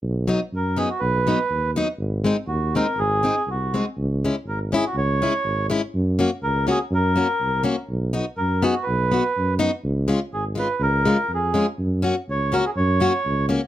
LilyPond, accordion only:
\new Staff \with { instrumentName = "Accordion" } { \time 2/4 \key b \major \tempo 4 = 122 r4 ais'8 gis'16 fis'16 | b'4. r8 | r4 fis'8 ais'8 | gis'4 fis'8. r16 |
r4 ais'8 gis'16 fis'16 | cis''4. r8 | r4 ais'8 gis'8 | ais'4. r8 |
r4 ais'8 gis'16 fis'16 | b'4. r8 | r4 gis'8 b'8 | ais'4 gis'8. r16 |
r4 cis''8 ais'16 gis'16 | cis''4. r8 | }